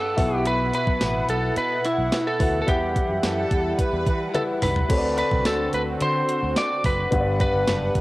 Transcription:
Already playing: grand piano G2 D4 G4 B4 F#5, analog synth pad G3 B4 F#5, lead electric guitar A4
0.17 fretless electric bass B1, grand piano B2 E4 F#4 B4 F#5, analog synth pad B3 E4, kick, open hi-hat
0.35 lead electric guitar G4
0.45 lead electric guitar B4, closed hi-hat
0.73 lead electric guitar B4, closed hi-hat
0.87 fretless electric bass B1, kick
1.01 fretless electric bass A1, snare, closed hi-hat, tambourine
1.29 fretless electric bass B1, lead electric guitar A4, closed hi-hat
1.56 fretless electric bass B2, lead electric guitar B4, closed hi-hat
1.85 lead electric guitar E4, closed hi-hat
1.98 fretless electric bass B1
2.12 snare, closed hi-hat, tambourine
2.27 lead electric guitar A4
2.40 fretless electric bass D2, grand piano E4 F#4 B4 F#5, kick, open hi-hat
2.62 lead electric guitar A4
2.67 fretless electric bass E2, grand piano E3 E4 G4 B4 F#5, analog synth pad G3, lead electric guitar G4, kick, closed hi-hat
2.96 kick, closed hi-hat
3.10 fretless electric bass F#2
3.23 fretless electric bass F#2, violin section A4, snare, closed hi-hat, tambourine
3.51 fretless electric bass E2, kick, closed hi-hat
3.79 violin section B4, kick, closed hi-hat
3.93 fretless electric bass E2
4.07 fretless electric bass E3, kick, closed hi-hat
4.34 grand piano E4 G4 B4 F#5, violin section E4, lead electric guitar A4, closed hi-hat, high tom
4.62 fretless electric bass C2, lead electric guitar B4, mid tom, open hi-hat
4.76 floor tom
4.89 fretless electric bass D2, grand piano D3 C4 D4 F#4 A4 C#5, analog synth pad D3 C4 F#4, kick, closed hi-hat, crash
4.97 grand piano D5
5.18 lead electric guitar B4, closed hi-hat
5.31 fretless electric bass C2, kick
5.45 fretless electric bass D2, lead electric guitar A4, snare, closed hi-hat, tambourine
5.73 fretless electric bass D2, lead electric guitar B4, closed hi-hat
6.01 fretless electric bass D3, lead electric guitar C5, closed hi-hat
6.29 closed hi-hat
6.43 fretless electric bass D2
6.56 lead electric guitar D5, snare, closed hi-hat, tambourine
6.84 fretless electric bass F#1, lead electric guitar B4, kick, open hi-hat
7.11 fretless electric bass G1, grand piano G2 B3 D4 G4 C5 F#5, analog synth pad G3 B4 F#5, kick, closed hi-hat
7.20 grand piano D5
7.40 lead electric guitar B4, kick, closed hi-hat
7.54 fretless electric bass G1
7.68 fretless electric bass F#1, snare, closed hi-hat, tambourine
7.95 fretless electric bass G1, kick, closed hi-hat

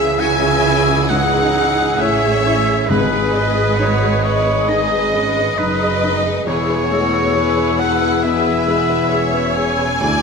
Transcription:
Already playing: felt piano C#2 G#3 G#4, double bass section C#2, timpani C#3, cello section C#3, french horn section E3 C#4, violin section C#4 G#4 E5, viola section G#4, clarinet G#4, oboe E5, flute section E6
0.19 felt piano E4, violin section F#4 G#5, viola section E5, oboe G#5
0.42 felt piano G#4
0.64 violin section E4, felt piano E4
0.87 felt piano G#4
1.09 felt piano G#2, viola section D#4, violin section D#4 G#4 F#5, oboe F#5
1.33 felt piano G#4
1.55 felt piano G#3, violin section C#4
1.78 felt piano G#4
1.99 double bass section A1, cello section A2, felt piano E4, viola section C#5, violin section E5, oboe E5
2.23 felt piano G#4
2.46 felt piano E4
2.68 felt piano G#4
2.88 double bass section G#1, timpani G#2, cello section G#2, felt piano G#2, french horn section G#3 D#5, violin section D#4 G#4 B4, clarinet G#4, viola section B4, oboe B4, flute section D#6
3.12 felt piano G#4
3.33 felt piano G#3, violin section E4, viola section D#5
3.57 felt piano G#4
3.77 felt piano D#4, violin section F#4 B4, viola section C#5
4.01 felt piano G#4
4.22 violin section E4 C#5, viola section B4, oboe C#5, felt piano D#5
4.47 felt piano G#4
4.67 felt piano D#3, violin section D#4 D#5, viola section G#4, oboe D#5
4.91 felt piano G#4
5.12 felt piano G#3, violin section C#4, viola section B4
5.37 felt piano G#4
5.57 double bass section F#1, cello section F#2, violin section D#4 B4, felt piano D#4, oboe B4, viola section D#5
5.81 felt piano G#4
6.03 violin section D#4, felt piano D#4
6.26 felt piano G#4
6.45 double bass section E1, cello section E2, felt piano E2, french horn section B3 E4, violin section E4 G#4 C#5, viola section G#4, clarinet G#4, oboe C#5, flute section E6
6.70 felt piano B4
6.89 felt piano G#3, viola section A3, violin section F#4
7.13 felt piano B4
7.34 violin section E4 G#4, felt piano G#4, viola section B4
7.58 felt piano B4
7.78 violin section A4 F#5, viola section B4, felt piano B4, oboe F#5
8.02 felt piano B4
8.23 felt piano B2, viola section G#4, violin section B4 E5, oboe E5
8.46 felt piano B4
8.67 felt piano G#3, violin section G#4, viola section B4
8.90 felt piano B4
9.11 violin section C#4 G#4, felt piano G#4, viola section C#5
9.34 felt piano B4
9.55 felt piano G#4, violin section G#5, oboe G#5
9.78 felt piano B4
10.00 felt piano D2, cello section D2, double bass section D2, french horn section A3 E4, violin section D4, clarinet E4, viola section D5, flute section E6

